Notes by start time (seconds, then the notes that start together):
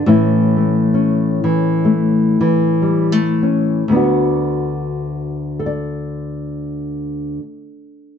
0.06 A2 E3 A3 C#4 E4
0.57 A3
0.94 C#4
1.44 E3
1.85 A3
2.41 E3
2.82 G3
3.12 A3
3.43 C#4
3.88 D2 D3 B3
3.94 D4 F#4
5.59 A4
5.66 D5